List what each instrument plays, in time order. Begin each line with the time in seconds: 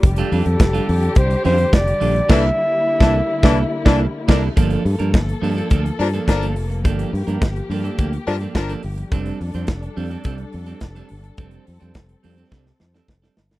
Already playing: string section G3
0.03 fingered electric bass F1, string section D3 G4, muted clean electric guitar stroke, kick, closed hi-hat
0.16 clean electric guitar G3 D4 F4 A4, closed hi-hat
0.32 fingered electric bass F2, clean electric guitar G3 D4 F4 A4, flugelhorn A4, open hi-hat
0.46 fingered electric bass F2, muted clean electric guitar stroke, closed hi-hat
0.59 fingered electric bass F1, muted clean electric guitar stroke, kick, snare, closed hi-hat
0.73 clean electric guitar G3 D4 F4 A4, closed hi-hat
0.88 fingered electric bass F2, muted clean electric guitar stroke, open hi-hat
1.02 muted clean electric guitar stroke, closed hi-hat
1.15 fingered electric bass C2, flugelhorn C5, muted clean electric guitar stroke, kick, closed hi-hat
1.30 muted clean electric guitar stroke, closed hi-hat
1.44 fingered electric bass F2, clean electric guitar G3 D4 F4 A4, flugelhorn C5, snare, open hi-hat
1.58 muted clean electric guitar stroke, closed hi-hat
1.73 fingered electric bass F1, flugelhorn D5, kick, snare, closed hi-hat
1.87 muted clean electric guitar stroke, closed hi-hat
2.00 fingered electric bass A#1, clean electric guitar G3 D4 F4 A4, open hi-hat
2.15 muted clean electric guitar stroke, closed hi-hat
2.29 fingered electric bass C2, horn section E3 D4 A4, clean electric guitar A#3 D4 E4 A4, string section A#3 E4, flugelhorn E5, kick, snare, crash
3.00 fingered electric bass C2, horn section E3 D4 A4, clean electric guitar A#3 D4 E4 A4, kick, snare
3.43 fingered electric bass C2, horn section E3 D4 A4, clean electric guitar A#3 D4 E4 A4, kick, snare
3.85 fingered electric bass C2, horn section E3 D4 A4, clean electric guitar A#3 D4 E4 A4, kick, snare
4.28 fingered electric bass C2, clean electric guitar A#3 D4 E4 A4, horn section D4 A#4, kick, snare, crash
4.56 fingered electric bass G1, string section F3 A#3 A4, clean electric guitar F3 A#3 D4 A4, kick, closed hi-hat
4.70 closed hi-hat
4.84 fingered electric bass G2, muted clean electric guitar stroke, open hi-hat
4.99 fingered electric bass G2, clean electric guitar F3 A#3 D4 A#4, closed hi-hat
5.13 fingered electric bass G1, muted clean electric guitar stroke, kick, snare, closed hi-hat
5.27 muted clean electric guitar stroke, closed hi-hat
5.42 fingered electric bass G2, clean electric guitar F3 A#3 D4 A4, open hi-hat
5.56 clean electric guitar F3 A#3 D4 A4, closed hi-hat
5.70 fingered electric bass D2, clean electric guitar F3 A#3 D4 A4, kick, closed hi-hat
5.85 muted clean electric guitar stroke, closed hi-hat
5.99 fingered electric bass G2, horn section F3 D4 A#4, muted clean electric guitar stroke, snare, open hi-hat
6.13 clean electric guitar F3 A#3 D4 A4, closed hi-hat
6.28 fingered electric bass G1, horn section F3 D4 A#4, muted clean electric guitar stroke, kick, snare, closed hi-hat
6.41 clean electric guitar F3 A#3 D4 A4, closed hi-hat
6.56 fingered electric bass F1, muted clean electric guitar stroke, open hi-hat
6.70 muted clean electric guitar stroke, closed hi-hat
6.84 fingered electric bass G1, clean electric guitar F3 A#3 D4 A4, string section G4, kick, closed hi-hat
6.99 closed hi-hat
7.13 fingered electric bass G2, muted clean electric guitar stroke, open hi-hat
7.27 fingered electric bass G2, clean electric guitar F3 A#3 D4 A#4, closed hi-hat
7.42 fingered electric bass G1, kick, snare, closed hi-hat
7.56 muted clean electric guitar stroke, closed hi-hat
7.70 fingered electric bass G2, clean electric guitar F3 A#3 D4 A4, open hi-hat
7.84 clean electric guitar F3 A#3 D4 A4, closed hi-hat
7.98 fingered electric bass D2, clean electric guitar F3 A#3 D4 A4, kick, closed hi-hat
8.13 muted clean electric guitar stroke, closed hi-hat
8.27 fingered electric bass G2, horn section F3 D4 A#4, muted clean electric guitar stroke, snare, open hi-hat
8.41 clean electric guitar F3 A#3 D4 A4, closed hi-hat
8.55 fingered electric bass G1, horn section F3 D4 A#4, kick, snare, closed hi-hat
8.69 clean electric guitar F3 A#3 D4 A4, closed hi-hat
8.83 fingered electric bass G1, muted clean electric guitar stroke, open hi-hat
8.98 muted clean electric guitar stroke, closed hi-hat
9.11 fingered electric bass F1, clean electric guitar G3 C4 D4 A4, string section G3 D4 A4, kick, closed hi-hat
9.26 closed hi-hat
9.40 fingered electric bass F2, muted clean electric guitar stroke, open hi-hat
9.54 fingered electric bass F2, clean electric guitar G3 C4 D4 C5, closed hi-hat
9.67 fingered electric bass F1, kick, snare, closed hi-hat
9.82 muted clean electric guitar stroke, closed hi-hat
9.97 fingered electric bass F2, clean electric guitar G3 C4 D4 A4, open hi-hat
10.11 clean electric guitar G3 C4 D4 A4, closed hi-hat
10.24 fingered electric bass C2, clean electric guitar G3 C4 D4 A4, kick, closed hi-hat
10.38 muted clean electric guitar stroke, closed hi-hat
10.53 fingered electric bass F2, muted clean electric guitar stroke, open hi-hat
10.66 clean electric guitar G3 C4 D4 A4, closed hi-hat
10.81 fingered electric bass F1, kick, snare, closed hi-hat
10.95 clean electric guitar G3 C4 D4 A4, closed hi-hat
11.09 fingered electric bass G1, muted clean electric guitar stroke, open hi-hat
11.24 muted clean electric guitar stroke, closed hi-hat
11.37 fingered electric bass F1, clean electric guitar G3 C4 D4 A4, string section C4, kick, closed hi-hat
11.51 closed hi-hat
11.67 fingered electric bass F2, open hi-hat
11.80 fingered electric bass F2, clean electric guitar G3 C4 D4 C5, closed hi-hat
11.94 fingered electric bass F1, kick, snare, closed hi-hat
12.09 muted clean electric guitar stroke, closed hi-hat
12.23 fingered electric bass F2, clean electric guitar G3 C4 D4 A4, open hi-hat
12.37 clean electric guitar G3 C4 D4 A4, closed hi-hat
12.51 fingered electric bass C2, clean electric guitar G3 C4 D4 A4, kick, snare
12.66 muted clean electric guitar stroke, snare
12.80 fingered electric bass F2, muted clean electric guitar stroke, snare
12.94 clean electric guitar G3 C4 D4 A4, snare
13.08 fingered electric bass F1, muted clean electric guitar stroke, kick, snare
13.22 clean electric guitar G3 C4 D4 A4, snare
13.37 fingered electric bass G1, snare
13.51 muted clean electric guitar stroke, snare